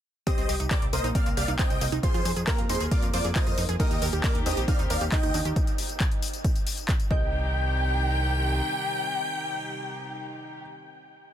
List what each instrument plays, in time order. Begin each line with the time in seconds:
0.27 felt piano G3 G4, synth arpeggio sound C4, supersaw synth C5 D#5, synth pluck D#6, kick, closed hi-hat, tambourine
0.38 analog synth bass C2, synth arpeggio sound C4, closed hi-hat, tambourine
0.49 analog synth bass C2, synth arpeggio sound G4, open hi-hat, tambourine
0.60 analog synth bass C2, synth arpeggio sound D#4, closed hi-hat, tambourine
0.71 synth arpeggio sound C4, supersaw synth A#4 D5, synth pluck D6, kick, clap, closed hi-hat, tambourine
0.82 analog synth bass C2, synth arpeggio sound C4, closed hi-hat
0.93 analog synth bass C2, felt piano A#3 A#4, synth arpeggio sound A#3, supersaw synth C5 D#5, synth pluck D#6, open hi-hat, tambourine
0.99 closed hi-hat
1.04 analog synth bass A#1, synth arpeggio sound D#4, closed hi-hat, tambourine
1.15 synth arpeggio sound C4, supersaw synth D5 F5, synth pluck F6, kick, closed hi-hat, tambourine
1.26 analog synth bass C2, synth arpeggio sound C4, closed hi-hat, tambourine
1.37 analog synth bass C2, synth arpeggio sound G4, supersaw synth D5 F5, synth pluck F6, open hi-hat, tambourine
1.48 analog synth bass C2, synth arpeggio sound D#4, closed hi-hat, tambourine
1.59 felt piano C4 C5, synth arpeggio sound C4, supersaw synth D#5 G5, synth pluck G6, kick, clap, closed hi-hat, tambourine
1.70 analog synth bass C2, synth arpeggio sound C4, closed hi-hat, tambourine
1.81 analog synth bass C2, synth arpeggio sound A#3, open hi-hat, tambourine
1.92 analog synth bass C2, synth arpeggio sound D#4, closed hi-hat, tambourine
2.03 synth arpeggio sound F4, supersaw synth G#4 C5, synth pluck C6, kick, closed hi-hat, tambourine
2.14 analog synth bass F2, synth arpeggio sound F4, closed hi-hat, tambourine
2.25 analog synth bass F2, synth arpeggio sound C5, open hi-hat, tambourine
2.36 analog synth bass F2, synth arpeggio sound G#4, closed hi-hat, tambourine
2.47 felt piano A#3 A#4, synth arpeggio sound F4, supersaw synth G4 A#4, synth pluck A#5, kick, clap, closed hi-hat, tambourine
2.58 analog synth bass F2, synth arpeggio sound F4, closed hi-hat
2.69 analog synth bass F2, synth arpeggio sound D#4, supersaw synth G#4 C5, synth pluck C6, open hi-hat, tambourine
2.75 closed hi-hat
2.80 analog synth bass D#2, synth arpeggio sound G#4, closed hi-hat, tambourine
2.91 supersaw synth F4 D5, synth arpeggio sound F4, synth pluck D6, kick, closed hi-hat, tambourine
3.02 analog synth bass F2, synth arpeggio sound F4, closed hi-hat, tambourine
3.14 analog synth bass F2, supersaw synth F4 D5, synth arpeggio sound C5, synth pluck D6, open hi-hat, tambourine
3.25 analog synth bass F2, synth arpeggio sound G#4, closed hi-hat, tambourine
3.36 synth arpeggio sound F4, supersaw synth C5 D#5, synth pluck D#6, kick, clap, closed hi-hat, tambourine
3.47 analog synth bass F2, synth arpeggio sound F4, closed hi-hat, tambourine
3.58 analog synth bass F2, synth arpeggio sound D#4, open hi-hat, tambourine
3.69 analog synth bass F2, synth arpeggio sound G#4, closed hi-hat, tambourine
3.80 string section A#2 D#3 G3 D#4 G4, felt piano A#3 A#4, synth arpeggio sound D#4, supersaw synth G4 D#5, synth pluck D#6, kick, closed hi-hat, tambourine
3.91 analog synth bass D#2, synth arpeggio sound D#4, closed hi-hat, tambourine
4.02 analog synth bass D#2, synth arpeggio sound A#4, open hi-hat, tambourine
4.13 analog synth bass D#2, synth arpeggio sound G4, closed hi-hat, tambourine
4.24 synth arpeggio sound D#4, supersaw synth A#4 D5, synth pluck D6, kick, clap, closed hi-hat, tambourine
4.35 analog synth bass D#2, synth arpeggio sound D#4, closed hi-hat
4.46 analog synth bass D#2, felt piano C4 C5, synth arpeggio sound D4, supersaw synth G4 D#5, synth pluck D#6, open hi-hat, tambourine
4.52 closed hi-hat
4.57 analog synth bass A#1, synth arpeggio sound G4, closed hi-hat, tambourine
4.68 synth arpeggio sound D#4, supersaw synth D5 F5, synth pluck F6, kick, closed hi-hat, tambourine
4.79 analog synth bass D#2, synth arpeggio sound D#4, closed hi-hat, tambourine
4.90 analog synth bass D#2, synth arpeggio sound A#4, supersaw synth D5 F5, synth pluck F6, open hi-hat, tambourine
5.01 analog synth bass D#2, synth arpeggio sound G4, closed hi-hat, tambourine
5.12 felt piano D#4 D#5, synth arpeggio sound D#4, supersaw synth D#5 G5, synth pluck G6, kick, clap, closed hi-hat, tambourine
5.23 analog synth bass D#2, synth arpeggio sound D#4, closed hi-hat, tambourine
5.34 analog synth bass D#2, synth arpeggio sound D4, open hi-hat, tambourine
5.45 analog synth bass D#2, synth arpeggio sound G4, closed hi-hat, tambourine
5.56 kick, closed hi-hat, tambourine
5.67 closed hi-hat, tambourine
5.78 open hi-hat, tambourine
5.89 closed hi-hat, tambourine
6.00 kick, clap, closed hi-hat, tambourine
6.11 closed hi-hat
6.22 open hi-hat, tambourine
6.28 closed hi-hat
6.33 closed hi-hat, tambourine
6.44 kick, closed hi-hat, tambourine
6.56 closed hi-hat, tambourine
6.67 open hi-hat, tambourine
6.78 closed hi-hat, tambourine
6.89 kick, clap, closed hi-hat, tambourine
7.00 closed hi-hat, tambourine
7.11 analog synth bass C2, string section C3 D#3 G3 D#4 G4, synth arpeggio sound C4, felt piano D#5, supersaw synth G5, synth pluck G6, kick